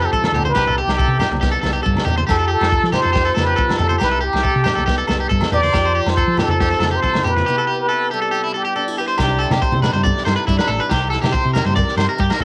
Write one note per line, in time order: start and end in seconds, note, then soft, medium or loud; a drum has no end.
0.00 0.13 C3 medium
0.00 0.56 F3 medium
0.00 0.56 C4 medium
0.00 0.55 F4 medium
0.00 2.31 G4 medium
0.00 0.12 G4 medium
0.05 0.47 A4 medium
0.12 0.21 C2 medium
0.12 0.35 E3 medium
0.12 0.33 A4 medium
0.12 kick medium
0.24 snare medium
0.24 high conga medium
0.24 low agogo medium
0.32 0.50 D2 loud
0.32 0.55 D3 medium
0.32 0.45 G4 medium
0.32 low conga medium
0.45 0.83 B4 loud
0.45 0.54 C5 medium
0.45 high conga medium
0.55 0.81 C2 medium
0.55 1.64 C3 medium
0.55 1.42 B3 medium
0.55 0.66 G4 medium
0.55 muted steel-string acoustic guitar stroke medium
0.55 kick medium
0.55 snare medium
0.55 low agogo medium
0.67 0.77 A4 medium
0.67 low conga medium
0.78 0.98 G4 medium
0.78 1.44 G4 medium
0.87 1.04 C2 medium
0.87 snare medium
0.87 low agogo medium
0.98 2.27 E4 medium
0.98 1.19 A4 medium
0.98 kick medium
1.08 1.17 C3 medium
1.19 2.30 G3 medium
1.19 1.31 G4 medium
1.19 snare medium
1.19 high conga medium
1.19 low conga medium
1.19 low agogo medium
1.30 1.55 C2 medium
1.30 muted clean electric guitar stroke medium
1.30 high conga medium
1.41 2.27 B3 medium
1.41 1.51 G4 medium
1.41 kick medium
1.41 snare medium
1.52 1.60 A4 medium
1.62 1.80 C2 medium
1.62 2.29 G2 medium
1.62 1.73 A4 medium
1.62 snare medium
1.62 high conga medium
1.62 low agogo medium
1.73 1.82 G4 medium
1.83 1.95 G2 medium
1.83 2.07 D3 medium
1.83 2.04 A4 medium
1.83 kick medium
1.95 snare medium
1.95 high conga medium
1.95 low agogo medium
2.05 2.23 E2 loud
2.05 2.29 E3 medium
2.05 2.17 G4 medium
2.05 low conga medium
2.17 2.26 C5 medium
2.17 high conga medium
2.27 2.54 F2 medium
2.27 4.02 F3 medium
2.27 3.14 F4 medium
2.27 2.38 G4 medium
2.27 2.50 A4 loud
2.27 kick medium
2.27 snare medium
2.27 low agogo medium
2.31 2.73 G4 medium
2.39 2.47 A4 medium
2.48 2.69 G4 medium
2.53 2.95 A4 loud
2.61 2.78 F2 medium
2.61 snare medium
2.61 low agogo medium
2.69 2.91 A4 medium
2.69 kick medium
2.73 3.57 G4 medium
2.83 2.91 F3 medium
2.83 snare soft
2.92 4.01 C4 medium
2.92 3.02 G4 medium
2.92 3.41 C5 loud
2.92 snare medium
2.92 high conga medium
2.92 low conga medium
2.92 low agogo medium
3.03 3.29 F2 medium
3.03 3.12 A4 medium
3.13 3.99 F4 medium
3.13 3.25 G4 medium
3.13 kick medium
3.13 snare medium
3.25 3.33 A4 medium
3.25 snare soft
3.35 3.53 F2 medium
3.35 3.46 A4 medium
3.35 snare medium
3.35 high conga medium
3.35 low agogo medium
3.40 3.79 B4 medium
3.47 3.56 G4 medium
3.56 3.67 C2 medium
3.56 3.78 G4 medium
3.56 3.77 A4 medium
3.56 kick medium
3.69 snare medium
3.69 high conga medium
3.69 low agogo medium
3.78 3.96 F2 loud
3.78 5.53 G4 medium
3.78 3.89 A4 medium
3.78 4.00 A4 medium
3.78 low conga medium
3.89 3.98 C5 medium
3.89 high conga medium
3.98 4.26 C2 loud
3.98 5.09 C3 medium
3.98 4.45 E4 medium
3.98 4.11 G4 medium
3.98 muted steel-string acoustic guitar stroke medium
3.98 kick medium
3.98 snare medium
3.98 low agogo medium
4.02 4.25 B4 medium
4.11 4.20 A4 medium
4.21 4.42 G4 medium
4.21 5.10 G4 medium
4.33 4.50 C2 medium
4.33 snare medium
4.33 low agogo medium
4.43 4.64 A4 medium
4.43 kick loud
4.56 4.64 C3 loud
4.64 5.75 G3 medium
4.64 4.75 G4 medium
4.64 snare medium
4.64 high conga medium
4.64 low conga medium
4.64 low agogo medium
4.75 5.01 C2 medium
4.75 4.86 A4 medium
4.75 high conga medium
4.86 5.72 B3 medium
4.86 4.97 G4 medium
4.86 kick loud
4.86 snare medium
4.98 5.07 A4 medium
5.07 5.25 C2 medium
5.07 5.74 G2 medium
5.07 5.20 A4 medium
5.07 snare medium
5.07 high conga medium
5.07 low agogo medium
5.20 5.29 G4 medium
5.29 5.40 G2 medium
5.29 5.72 E4 medium
5.29 5.51 A4 medium
5.29 kick medium
5.41 snare medium
5.41 high conga medium
5.41 low agogo medium
5.52 5.69 E2 loud
5.52 5.63 G4 medium
5.52 5.72 B4 medium
5.52 6.10 D5 loud
5.52 low conga medium
5.63 5.73 C5 medium
5.63 high conga medium
5.73 5.99 F2 medium
5.73 7.47 F3 medium
5.73 6.60 F4 medium
5.73 5.85 G4 medium
5.73 kick medium
5.73 snare medium
5.73 low agogo medium
5.77 6.17 G4 medium
5.85 5.95 C5 medium
5.95 6.16 G4 medium
6.06 6.23 F2 medium
6.06 6.43 C5 medium
6.06 snare medium
6.06 low agogo medium
6.17 7.04 G4 medium
6.17 6.38 A4 medium
6.17 kick medium
6.27 6.36 F3 loud
6.37 7.48 C4 medium
6.37 6.50 G4 medium
6.37 snare medium
6.37 high conga medium
6.37 low conga medium
6.37 low agogo medium
6.42 6.97 A4 medium
6.48 6.73 F2 medium
6.48 6.60 A4 medium
6.48 high conga medium
6.60 7.45 F4 medium
6.60 6.71 G4 medium
6.60 kick medium
6.60 snare medium
6.71 6.79 A4 medium
6.71 snare soft
6.80 6.97 F2 medium
6.80 7.47 C3 medium
6.80 6.91 A4 medium
6.80 snare medium
6.80 high conga medium
6.80 low agogo medium
6.91 7.02 G4 medium
6.96 7.30 C5 loud
7.02 7.12 C2 medium
7.02 7.26 G4 medium
7.02 7.23 A4 medium
7.02 kick medium
7.14 snare medium
7.14 high conga medium
7.14 low agogo medium
7.24 7.41 F2 loud
7.24 7.36 G4 medium
7.24 8.98 G4 medium
7.24 7.80 B4 medium
7.24 low conga medium
7.36 muted clean electric guitar stroke medium
7.36 snare soft
7.36 high conga medium
7.46 8.55 C3 medium
7.46 8.33 B3 medium
7.46 7.91 E4 medium
7.46 7.57 G4 medium
7.58 7.67 A4 medium
7.67 7.88 G4 medium
7.81 8.14 B4 medium
7.89 8.09 A4 medium
7.93 8.75 E4 medium
8.11 9.17 G3 medium
8.11 8.21 G4 medium
8.11 8.55 A4 medium
8.22 8.31 A4 medium
8.31 9.17 B3 medium
8.31 8.43 G4 medium
8.44 8.53 E4 medium
8.54 9.19 G2 medium
8.54 8.95 G4 medium
8.54 8.64 A4 medium
8.65 8.75 G4 medium
8.76 8.88 D4 medium
8.76 8.96 A4 medium
8.88 9.19 E4 soft
8.98 9.07 G4 medium
8.98 9.18 B4 medium
9.08 9.18 C5 medium
9.18 9.44 C2 loud
9.18 10.90 C3 medium
9.18 9.83 G3 medium
9.18 10.48 D4 medium
9.18 9.39 G4 medium
9.18 kick medium
9.18 snare medium
9.18 low agogo medium
9.22 9.43 E4 medium
9.22 9.64 G4 medium
9.39 9.50 A4 medium
9.43 9.84 E4 medium
9.50 9.59 C3 medium
9.50 9.61 G4 medium
9.50 snare medium
9.50 high conga medium
9.50 low agogo medium
9.62 10.05 A4 medium
9.62 9.82 C5 medium
9.62 kick loud
9.72 9.89 C3 loud
9.72 high conga medium
9.82 10.89 G3 medium
9.82 10.26 E4 medium
9.82 9.93 B4 medium
9.82 snare medium
9.82 low conga medium
9.82 low agogo medium
9.93 10.11 G2 loud
9.93 10.03 C5 medium
9.93 high conga medium
10.04 10.89 A4 medium
10.04 10.25 D5 loud
10.04 kick loud
10.04 high conga medium
10.18 snare soft
10.25 10.35 G2 loud
10.25 10.89 E4 medium
10.25 10.36 C5 medium
10.25 snare medium
10.25 low agogo medium
10.36 10.46 B4 medium
10.47 10.57 G2 medium
10.47 10.91 G2 medium
10.47 10.89 D4 medium
10.47 10.58 E4 medium
10.47 kick medium
10.47 snare soft
10.59 10.68 B4 medium
10.59 snare medium
10.59 low agogo medium
10.68 10.78 A1 loud
10.68 10.79 A4 medium
10.80 10.90 B4 medium
10.90 11.16 C2 loud
10.90 12.20 C3 medium
10.90 11.10 G4 medium
10.90 kick medium
10.90 snare medium
10.90 low agogo medium
11.10 11.55 E4 medium
11.10 11.21 A4 medium
11.10 snare soft
11.22 11.31 C3 loud
11.22 11.32 G4 medium
11.22 snare medium
11.22 high conga medium
11.22 low agogo medium
11.32 11.77 G4 medium
11.32 11.53 C5 medium
11.32 kick loud
11.45 11.62 C3 loud
11.54 12.44 G3 medium
11.54 11.99 E4 medium
11.54 11.65 A#4 medium
11.54 snare medium
11.54 low conga medium
11.54 low agogo medium
11.66 11.82 G2 loud
11.66 11.75 C5 medium
11.66 high conga medium
11.76 12.44 A#4 medium
11.76 11.97 D5 loud
11.76 kick loud
11.76 high conga medium
11.88 snare soft
11.97 12.06 G2 loud
11.97 12.44 E4 medium
11.97 12.08 C5 medium
11.97 snare medium
11.97 low agogo medium
12.09 12.19 A#4 medium
12.18 12.44 G2 medium
12.18 12.28 G2 medium
12.18 12.44 A#3 medium
12.18 12.31 G4 medium
12.18 kick medium
12.30 12.40 A#4 medium
12.30 snare medium
12.30 low agogo medium
12.40 12.44 A#1 medium
12.40 low conga medium